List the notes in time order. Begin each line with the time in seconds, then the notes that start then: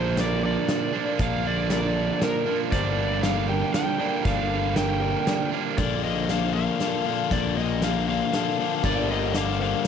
Already playing: A#1 A#2 D3 F3 A#3 D4 C5
0.17 A#3 D5, snare, closed hi-hat
0.43 D4 A#4 D5
0.68 F3, snare, closed hi-hat
0.93 A#2 D3 F3 A#3 D4 D5
1.19 A#1 A#2 D3 F3 A#3 F5, kick, closed hi-hat
1.23 D4
1.45 D3 D5
1.70 A#3 A#4 D5, snare, closed hi-hat
1.95 D4
2.21 F3 A#4 D5, snare, closed hi-hat
2.46 A#2 D3 F3 A#3 D4
2.72 G1 G2 D3 G3 A#3 D4 C5 D5, kick, closed hi-hat
2.98 D3
3.23 A#3 F5, snare, closed hi-hat
3.49 D4 A#4 G5
3.74 F3 G5, snare, closed hi-hat
3.99 G2 D3 G3 A#3 D4 D5
4.24 G1 G2 D3 G3 A#3 D4 F5, kick, closed hi-hat
4.50 D3
4.76 A#3 A#4 G5, snare, closed hi-hat
5.02 D4
5.27 F3 D5, snare, closed hi-hat
5.52 G2 D3 G3 A#3 D4
5.78 A#1 A#2 D3 F3 A#3 D4 A4 D5, kick, snare, closed hi-hat
6.03 A#2 D3 F3 A#3 D4 D#5
6.29 A#2 D3 F3 A#3 D4 F5, snare, closed hi-hat
6.55 A#2 D3 F3 A#3 D4 F5
6.80 A#2 D3 F3 A#3 D4 A4, snare, closed hi-hat
7.05 A#2 D3 F3 A#3 D4 A4
7.31 A#1 A#2 D3 F3 A#3 D4 D5, kick, snare, closed hi-hat
7.56 A#2 D3 F3 A#3 D4 D#5
7.82 A#2 D3 F3 A#3 D4 F5, snare, closed hi-hat
8.07 A#2 D3 F3 A#3 D4 F5
8.32 A#2 D3 F3 A#3 D4 A4, snare, closed hi-hat
8.58 A#2 D3 F3 A#3 D4
8.83 G1 G2 D3 G3 A#3 D4 A#4 D5, kick, snare, crash
9.09 G2 D3 F3 G3 A#3 D4 D#5
9.34 G2 D3 G3 A#3 D4 F5, snare, closed hi-hat
9.60 G2 D3 G3 A#3 D4 C5 F5